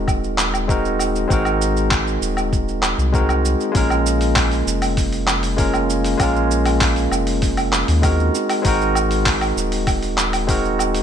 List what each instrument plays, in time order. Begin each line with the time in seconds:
Already playing: analog synth bass D#1, tine electric piano G#3 C4 D#4 F#4 A#4
0.08 kick, cabasa, low woodblock
0.24 cabasa
0.38 clap, cabasa
0.54 cabasa, low woodblock
0.68 tine electric piano G#3 C4 D#4 F#4 A#4, kick, cabasa
0.85 cabasa
0.99 cabasa, low woodblock
1.16 cabasa
1.27 analog synth bass G#1, tine electric piano G#3 C4 D#4, kick, cabasa
1.32 tine electric piano F#4 A#4
1.45 cabasa, low woodblock
1.61 cabasa
1.77 cabasa
1.91 kick, clap, cabasa, low woodblock
2.07 cabasa
2.22 analog synth bass D#1, cabasa
2.37 cabasa, low woodblock
2.53 kick, cabasa
2.68 cabasa
2.83 clap, cabasa, low woodblock
2.98 analog synth bass C2, cabasa
3.12 tine electric piano G#3 C4 D#4 F#4 A#4, kick, cabasa
3.29 cabasa, low woodblock
3.45 cabasa
3.60 cabasa
3.72 analog synth bass A#1, tine electric piano G#3 A#3 C#4, kick, open hi-hat
3.76 tine electric piano F4 A#4, cabasa
3.90 cabasa, low woodblock
4.06 cabasa
4.21 open hi-hat, cabasa
4.36 kick, clap, open hi-hat, cabasa, low woodblock
4.52 open hi-hat, cabasa
4.67 analog synth bass F1, cabasa
4.82 open hi-hat, cabasa, low woodblock
4.97 kick, open hi-hat, cabasa
5.13 open hi-hat, cabasa
5.27 clap, cabasa, low woodblock
5.43 open hi-hat, cabasa
5.57 tine electric piano G#3 A#3 C#4 F4 A#4, kick, open hi-hat, cabasa
5.74 cabasa, low woodblock
5.90 cabasa
6.04 open hi-hat, cabasa
6.17 analog synth bass A#1, tine electric piano G#3 A#3 C#4, kick, open hi-hat, cabasa, low woodblock
6.21 tine electric piano F4 A#4
6.36 cabasa
6.51 cabasa
6.65 open hi-hat, cabasa, low woodblock
6.81 kick, clap, open hi-hat, cabasa
6.96 open hi-hat, cabasa
7.11 analog synth bass F1, cabasa, low woodblock
7.27 open hi-hat, cabasa
7.42 kick, open hi-hat, cabasa
7.57 open hi-hat, cabasa, low woodblock
7.73 clap, cabasa
7.88 analog synth bass D#2, open hi-hat, cabasa
8.02 tine electric piano G#3 C4 D#4 F#4 A#4, kick, open hi-hat, cabasa, low woodblock
8.20 cabasa
8.35 cabasa
8.49 open hi-hat, cabasa, low woodblock
8.62 analog synth bass G#1, tine electric piano G#3 C4 D#4, kick, open hi-hat, cabasa
8.66 tine electric piano F#4 A#4
8.81 cabasa
8.95 cabasa, low woodblock
9.11 open hi-hat, cabasa
9.26 kick, clap, open hi-hat, cabasa
9.41 open hi-hat, cabasa, low woodblock
9.57 analog synth bass D#1, cabasa
9.72 open hi-hat, cabasa
9.87 kick, open hi-hat, cabasa, low woodblock
10.03 open hi-hat, cabasa
10.18 clap, cabasa
10.33 open hi-hat, cabasa, low woodblock
10.47 tine electric piano G#3 C4 D#4 F#4 A#4, kick, open hi-hat, cabasa
10.65 cabasa
10.79 cabasa, low woodblock
10.95 open hi-hat, cabasa